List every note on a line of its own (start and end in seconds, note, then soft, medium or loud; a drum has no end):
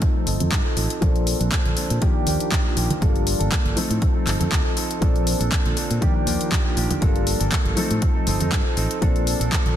0.00 0.15 F3 medium
0.00 0.97 F3 medium
0.00 0.97 A3 medium
0.00 0.16 C4 medium
0.00 0.97 C4 medium
0.00 0.15 D#4 medium
0.00 0.97 D#4 medium
0.00 0.13 A4 medium
0.00 0.98 A4 medium
0.00 kick loud
0.00 closed hi-hat medium
0.15 0.26 C4 soft
0.15 0.26 D#4 medium
0.15 0.26 A4 medium
0.15 tambourine soft
0.26 0.36 G1 medium
0.26 0.50 F3 medium
0.26 0.51 C4 medium
0.26 0.51 D#4 medium
0.26 0.52 A4 medium
0.26 open hi-hat loud
0.40 0.48 F2 medium
0.40 closed hi-hat soft
0.40 tambourine medium
0.40 low conga medium
0.51 0.65 F3 medium
0.51 kick loud
0.51 clap loud
0.51 closed hi-hat medium
0.65 0.76 C4 soft
0.65 0.76 D#4 medium
0.65 0.76 A4 medium
0.65 tambourine soft
0.76 0.86 A1 medium
0.76 1.00 F3 medium
0.76 1.01 C4 medium
0.76 1.02 D#4 medium
0.76 1.01 A4 medium
0.76 open hi-hat loud
0.90 closed hi-hat medium
0.90 tambourine medium
1.01 1.33 A#1 loud
1.01 1.97 F3 medium
1.01 1.40 F3 medium
1.01 1.97 A#3 medium
1.01 1.97 C4 medium
1.01 1.40 C4 medium
1.01 1.97 D4 medium
1.01 1.40 D4 medium
1.01 1.98 A4 medium
1.01 1.38 A4 medium
1.01 kick loud
1.01 closed hi-hat medium
1.16 closed hi-hat soft
1.27 open hi-hat loud
1.40 1.48 A#1 medium
1.40 1.50 C4 soft
1.40 1.51 D4 medium
1.40 1.51 A4 medium
1.40 closed hi-hat soft
1.40 tambourine medium
1.40 high conga medium
1.51 1.75 F3 loud
1.51 1.76 C4 medium
1.51 kick loud
1.51 clap loud
1.51 closed hi-hat medium
1.66 1.73 A#1 medium
1.66 closed hi-hat soft
1.66 tambourine soft
1.66 low conga medium
1.76 2.00 F3 medium
1.76 2.01 C4 medium
1.76 2.01 D4 medium
1.76 2.02 A4 medium
1.76 open hi-hat loud
1.90 1.98 A#2 medium
1.90 closed hi-hat soft
1.90 tambourine medium
2.01 2.98 D#3 medium
2.01 2.15 F3 medium
2.01 2.97 F3 medium
2.01 2.97 A#3 medium
2.01 2.15 A#3 medium
2.01 2.97 D4 medium
2.01 2.15 D4 medium
2.01 2.98 G4 medium
2.01 2.13 G4 medium
2.01 kick loud
2.01 closed hi-hat medium
2.15 2.26 A#3 soft
2.15 2.27 D4 medium
2.15 2.26 G4 medium
2.15 tambourine soft
2.26 2.36 D#2 medium
2.26 2.50 F3 medium
2.26 2.51 A#3 medium
2.26 2.51 D4 medium
2.26 2.52 G4 medium
2.26 open hi-hat loud
2.40 closed hi-hat soft
2.40 tambourine medium
2.51 2.65 F3 medium
2.51 2.66 A#3 medium
2.51 kick loud
2.51 clap loud
2.51 closed hi-hat medium
2.51 tambourine medium
2.51 high conga medium
2.65 2.76 A#3 medium
2.65 2.76 D4 medium
2.65 2.77 G4 medium
2.76 2.86 A#1 medium
2.76 3.00 F3 medium
2.76 3.01 A#3 medium
2.76 3.01 D4 medium
2.76 3.02 G4 medium
2.76 open hi-hat loud
2.90 closed hi-hat soft
2.90 tambourine medium
2.90 high conga medium
2.90 low conga loud
3.01 3.33 G1 loud
3.01 3.40 F3 medium
3.01 3.72 G3 medium
3.01 3.72 A#3 medium
3.01 3.40 A#3 medium
3.01 3.72 D4 medium
3.01 3.40 D4 loud
3.01 3.73 F4 medium
3.01 3.73 A4 medium
3.01 3.39 A4 loud
3.01 kick loud
3.01 closed hi-hat medium
3.01 tambourine medium
3.16 closed hi-hat soft
3.16 tambourine soft
3.27 open hi-hat loud
3.40 3.48 G1 medium
3.40 3.51 A#3 soft
3.40 3.51 D4 medium
3.40 3.51 A4 medium
3.40 closed hi-hat soft
3.40 tambourine medium
3.40 high conga medium
3.51 3.75 F3 medium
3.51 3.77 A#3 medium
3.51 kick loud
3.51 clap loud
3.51 closed hi-hat medium
3.65 3.73 G1 medium
3.65 closed hi-hat soft
3.65 tambourine soft
3.65 low conga medium
3.76 4.97 F3 medium
3.76 4.15 F3 medium
3.76 4.97 A3 medium
3.76 4.97 C4 medium
3.76 4.16 C4 medium
3.76 4.98 D#4 medium
3.76 4.15 D#4 medium
3.76 4.98 A4 loud
3.76 4.14 A4 medium
3.76 muted fingered electric bass stroke soft
3.76 open hi-hat loud
3.90 3.98 A2 medium
3.90 closed hi-hat soft
3.90 tambourine medium
4.02 kick loud
4.02 closed hi-hat medium
4.15 4.26 C4 soft
4.15 4.26 D#4 medium
4.15 4.26 A4 medium
4.15 tambourine soft
4.26 4.36 G1 medium
4.26 4.40 F3 medium
4.26 4.41 C4 medium
4.26 4.40 D#4 medium
4.26 4.38 A4 medium
4.26 clap medium
4.26 open hi-hat loud
4.40 4.48 F2 medium
4.40 4.50 C4 soft
4.40 4.51 D#4 soft
4.40 4.51 A4 medium
4.40 closed hi-hat soft
4.40 tambourine medium
4.40 low conga loud
4.51 4.61 D2 medium
4.51 4.65 F3 medium
4.51 4.65 C4 medium
4.51 kick loud
4.51 clap loud
4.51 closed hi-hat medium
4.65 4.76 C4 soft
4.65 4.76 D#4 medium
4.65 4.76 A4 medium
4.76 5.00 F3 medium
4.76 5.01 C4 medium
4.76 5.02 D#4 medium
4.76 5.02 A4 medium
4.76 open hi-hat loud
4.91 closed hi-hat soft
4.91 tambourine medium
5.01 5.33 A#1 loud
5.01 5.97 F3 medium
5.01 5.40 F3 medium
5.01 5.97 A#3 medium
5.01 5.97 C4 medium
5.01 5.40 C4 medium
5.01 5.97 D4 medium
5.01 5.40 D4 medium
5.01 5.38 A4 medium
5.01 5.98 A4 medium
5.01 kick loud
5.01 closed hi-hat medium
5.15 closed hi-hat soft
5.15 tambourine soft
5.27 open hi-hat loud
5.40 5.48 A#1 medium
5.40 5.51 C4 soft
5.40 5.51 D4 medium
5.40 5.51 A4 medium
5.40 closed hi-hat medium
5.40 tambourine medium
5.40 high conga medium
5.51 5.75 F3 medium
5.51 5.76 C4 medium
5.51 5.77 D4 medium
5.51 5.77 A4 loud
5.51 kick loud
5.51 clap loud
5.51 closed hi-hat medium
5.65 5.73 A#1 medium
5.65 closed hi-hat soft
5.65 tambourine soft
5.65 low conga medium
5.76 6.00 F3 medium
5.76 6.02 C4 medium
5.76 6.01 D4 medium
5.76 6.03 A4 medium
5.76 open hi-hat loud
5.90 5.98 A#2 medium
5.90 closed hi-hat soft
5.90 tambourine medium
6.01 6.97 D#3 medium
6.01 6.97 F3 medium
6.01 6.15 F3 medium
6.01 6.97 A#3 medium
6.01 6.16 A#3 medium
6.01 6.97 D4 medium
6.01 6.15 D4 medium
6.01 6.98 G4 medium
6.01 6.14 G4 medium
6.01 kick loud
6.01 closed hi-hat medium
6.15 6.26 A#3 medium
6.15 6.26 D4 medium
6.15 6.26 G4 medium
6.15 tambourine soft
6.26 6.36 D#2 medium
6.26 6.50 F3 medium
6.26 6.51 A#3 medium
6.26 6.51 D4 medium
6.26 6.52 G4 medium
6.26 open hi-hat loud
6.41 closed hi-hat soft
6.41 tambourine medium
6.52 6.64 G4 loud
6.52 kick loud
6.52 clap loud
6.52 closed hi-hat medium
6.52 tambourine medium
6.52 high conga medium
6.65 6.76 A#3 soft
6.65 6.77 D4 medium
6.65 6.76 G4 medium
6.76 6.86 A#1 medium
6.76 7.00 F3 medium
6.76 7.01 A#3 medium
6.76 7.01 D4 medium
6.76 7.03 G4 medium
6.76 open hi-hat loud
6.91 closed hi-hat soft
6.91 tambourine medium
6.91 high conga loud
6.91 low conga medium
7.01 7.33 G1 loud
7.01 7.40 F3 medium
7.01 7.72 G3 medium
7.01 7.72 A#3 medium
7.01 7.41 A#3 medium
7.01 7.72 D4 medium
7.01 7.40 D4 loud
7.01 7.73 F4 medium
7.01 7.73 A4 medium
7.01 7.39 A4 medium
7.01 kick loud
7.01 closed hi-hat medium
7.16 closed hi-hat soft
7.16 tambourine soft
7.27 open hi-hat loud
7.40 7.48 G1 medium
7.40 7.51 A#3 medium
7.40 7.51 D4 medium
7.40 7.52 A4 medium
7.40 closed hi-hat medium
7.40 tambourine medium
7.40 high conga medium
7.51 7.75 F3 medium
7.51 7.77 A#3 medium
7.51 7.77 D4 medium
7.51 7.77 A4 loud
7.51 kick loud
7.51 clap loud
7.51 closed hi-hat medium
7.65 7.73 G1 medium
7.65 closed hi-hat soft
7.65 tambourine soft
7.65 low conga medium
7.76 8.97 F3 medium
7.76 8.15 F3 medium
7.76 8.97 A3 medium
7.76 8.97 C4 medium
7.76 8.16 C4 medium
7.76 8.98 D#4 medium
7.76 8.15 D#4 medium
7.76 8.98 A4 loud
7.76 8.14 A4 medium
7.76 muted fingered electric bass stroke soft
7.76 open hi-hat loud
7.91 7.98 A2 medium
7.91 closed hi-hat medium
7.91 tambourine medium
8.02 kick loud
8.02 closed hi-hat medium
8.15 8.26 C4 soft
8.15 8.27 D#4 medium
8.15 8.27 A4 medium
8.15 tambourine soft
8.26 8.36 G1 medium
8.26 8.40 F3 medium
8.26 8.41 C4 medium
8.26 8.40 D#4 medium
8.26 8.39 A4 medium
8.26 open hi-hat loud
8.40 8.48 F2 medium
8.40 8.51 C4 soft
8.40 8.52 D#4 medium
8.40 8.52 A4 medium
8.40 closed hi-hat soft
8.40 tambourine medium
8.40 low conga medium
8.52 8.61 G2 medium
8.52 8.65 F3 medium
8.52 8.66 C4 medium
8.52 8.65 D#4 medium
8.52 kick loud
8.52 clap loud
8.52 closed hi-hat medium
8.52 tambourine medium
8.65 8.76 C4 soft
8.65 8.77 D#4 medium
8.65 8.77 A4 medium
8.65 tambourine soft
8.76 8.86 A1 medium
8.76 9.00 F3 medium
8.76 9.01 C4 medium
8.76 9.02 D#4 medium
8.76 9.02 A4 medium
8.76 open hi-hat loud
8.90 closed hi-hat soft
8.90 tambourine medium
9.01 9.33 A#1 loud
9.01 9.76 F3 medium
9.01 9.40 F3 medium
9.01 9.76 A#3 medium
9.01 9.76 C4 medium
9.01 9.41 C4 medium
9.01 9.76 D4 medium
9.01 9.40 D4 medium
9.01 9.76 A4 medium
9.01 9.39 A4 medium
9.01 kick loud
9.01 closed hi-hat medium
9.16 closed hi-hat soft
9.16 tambourine soft
9.27 open hi-hat loud
9.40 9.48 A#1 medium
9.40 9.51 C4 soft
9.40 9.51 D4 medium
9.40 9.51 A4 medium
9.40 closed hi-hat medium
9.40 tambourine medium
9.40 high conga medium
9.51 9.75 F3 medium
9.51 9.76 C4 medium
9.51 9.76 A4 loud
9.51 kick medium
9.51 clap loud
9.51 closed hi-hat medium
9.66 9.73 A#1 medium
9.66 closed hi-hat soft
9.66 tambourine soft
9.66 low conga medium